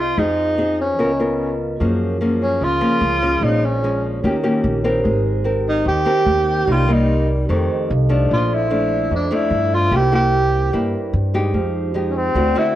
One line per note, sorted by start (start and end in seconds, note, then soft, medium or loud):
0.00 0.14 C2 medium
0.00 0.16 C3 medium
0.00 0.15 C4 medium
0.00 0.15 D#4 medium
0.00 0.20 F4 medium
0.00 0.15 G#4 medium
0.00 0.94 G#4 soft
0.00 0.95 C5 soft
0.00 0.96 D#5 soft
0.17 0.98 F2 medium
0.17 0.97 F3 soft
0.17 0.55 C4 medium
0.17 0.55 D#4 soft
0.17 0.79 D#4 medium
0.17 0.55 G#4 medium
0.58 0.85 C4 soft
0.58 0.85 D#4 medium
0.58 0.85 G#4 medium
0.81 1.57 C#4 medium
0.96 1.76 C#2 medium
0.96 1.78 C#3 soft
0.96 1.10 B3 soft
0.96 1.75 F4 soft
0.96 1.11 F4 medium
0.96 1.78 A#4 soft
0.96 1.11 A#4 medium
1.02 1.80 D#5 soft
1.19 1.77 B3 medium
1.19 1.77 F4 medium
1.19 1.77 A#4 medium
1.77 2.59 F#2 medium
1.77 2.57 F#2 medium
1.77 2.17 F3 soft
1.77 2.77 F4 medium
1.77 2.79 G#4 soft
1.77 2.79 A#4 medium
1.81 2.17 A#3 soft
1.81 2.18 C#4 medium
1.81 2.80 C#5 medium
2.21 2.61 F3 soft
2.21 2.61 A#3 soft
2.21 2.61 C#4 medium
2.42 2.65 C#4 medium
2.61 2.80 C#2 medium
2.61 3.40 C#3 medium
2.61 3.45 F4 loud
2.80 3.18 F3 medium
2.80 3.18 A#3 medium
2.80 3.18 C#4 medium
2.80 3.38 F4 soft
2.80 3.40 G#4 soft
2.80 3.42 A#4 soft
2.80 3.43 C#5 soft
3.01 3.39 C#2 loud
3.22 3.79 F3 medium
3.22 3.79 G#3 medium
3.22 3.80 C#4 medium
3.39 4.19 A#1 medium
3.39 4.21 A#2 soft
3.39 4.18 F4 soft
3.39 4.21 G#4 soft
3.43 3.66 D#4 medium
3.43 4.22 C5 soft
3.43 4.23 C#5 medium
3.65 4.04 C#4 medium
3.83 4.22 F3 soft
3.83 4.22 G#3 medium
3.83 4.22 C#4 medium
4.19 5.01 F4 medium
4.19 5.01 G4 soft
4.23 4.42 D#2 medium
4.23 5.03 D#3 medium
4.23 4.35 A#3 medium
4.23 4.36 C#4 medium
4.23 4.36 G4 medium
4.23 5.03 A#4 soft
4.23 5.04 C#5 medium
4.43 4.81 A#3 medium
4.43 4.81 C#4 medium
4.43 4.81 G4 medium
4.64 5.01 A#1 medium
4.84 5.42 C4 medium
4.84 5.42 G4 medium
4.84 5.42 A#4 medium
5.01 5.83 G#3 soft
5.01 6.62 D#4 medium
5.01 6.63 G4 medium
5.01 6.64 A#4 soft
5.05 5.82 G#1 medium
5.05 6.64 C5 medium
5.45 6.02 C4 medium
5.45 6.03 G4 soft
5.45 6.03 A#4 medium
5.69 5.86 D#4 medium
5.85 6.04 D#2 medium
5.85 6.65 D#3 soft
5.85 6.73 G4 loud
6.05 6.65 C4 medium
6.05 6.65 G4 medium
6.05 6.65 A#4 medium
6.26 6.64 D#2 medium
6.64 7.44 C2 medium
6.64 7.46 C3 soft
6.64 6.84 G3 soft
6.64 6.84 A#3 soft
6.64 7.44 D#4 soft
6.64 7.46 G4 soft
6.68 6.84 D#4 medium
6.68 6.94 F4 medium
6.68 7.47 A#4 soft
6.68 7.48 D5 soft
6.87 7.45 G3 medium
6.87 7.45 A#3 medium
6.87 7.45 D#4 medium
6.93 7.30 D#4 medium
7.45 8.28 F2 medium
7.45 7.67 F2 medium
7.45 7.89 D#3 medium
7.45 8.26 D#4 medium
7.45 8.27 G4 soft
7.45 8.28 A4 soft
7.50 7.89 A3 soft
7.50 7.89 C4 medium
7.50 8.29 C5 medium
7.69 7.87 D#5 medium
7.89 8.27 C2 loud
7.89 8.08 F5 medium
8.09 8.67 F3 medium
8.09 8.67 A3 medium
8.09 8.67 D4 medium
8.09 8.28 A5 soft
8.27 9.08 A#2 soft
8.27 9.87 D4 soft
8.31 9.07 A#1 medium
8.31 8.56 F4 medium
8.31 9.89 A4 soft
8.31 9.90 C5 medium
8.54 9.13 E4 medium
8.70 9.28 F3 soft
8.70 9.28 A3 soft
8.70 9.28 D4 medium
9.11 9.29 F2 medium
9.11 9.90 F2 medium
9.15 9.36 D4 medium
9.31 9.90 F3 medium
9.31 9.90 A3 medium
9.31 9.91 D4 medium
9.31 9.77 E4 medium
9.51 9.88 G2 medium
9.75 9.98 F4 medium
9.91 10.69 C2 medium
9.91 10.71 C3 soft
9.91 10.09 A#3 soft
9.91 10.09 E4 soft
9.91 11.51 G4 soft
9.91 10.09 G4 medium
9.91 11.52 A#4 soft
9.96 10.14 G4 medium
9.96 11.53 C5 medium
10.12 10.70 A#3 medium
10.12 10.70 E4 medium
10.12 10.70 G4 medium
10.12 10.91 G4 loud
10.73 11.52 G2 medium
10.73 10.92 G2 medium
10.73 11.13 A#3 medium
10.73 11.13 E4 medium
10.73 11.14 G4 medium
11.13 11.51 G2 medium
11.34 11.92 G#3 medium
11.34 11.92 D#4 medium
11.34 11.92 G4 medium
11.51 12.31 F2 medium
11.51 12.33 F3 soft
11.51 12.32 D#4 medium
11.51 12.33 G4 medium
11.57 12.35 C5 medium
11.94 12.33 G#3 medium
11.94 12.34 D#4 medium
11.94 12.34 G4 medium
12.11 12.19 C#4 medium
12.17 12.60 C4 loud
12.32 12.54 D2 medium
12.32 12.75 D3 medium
12.32 12.52 A3 medium
12.32 12.52 C4 medium
12.32 12.75 E4 soft
12.32 12.75 F#4 soft
12.36 12.53 F#4 medium
12.36 12.75 A4 soft
12.36 12.75 C5 medium
12.55 12.75 A3 medium
12.55 12.75 C4 medium
12.55 12.75 E4 loud
12.55 12.75 F#4 medium